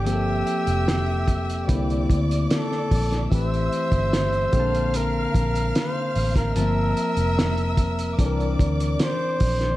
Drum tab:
HH |x-xxx-xxxxxxx-ox|xxxxxxxxx-xxx-ox|x-xxxxxxxxxxx-ox|
SD |----o-------oo-o|----o-------o--o|----o-------o--o|
BD |------o-o-o---o-|o--o--o---o----o|------o-o-o---o-|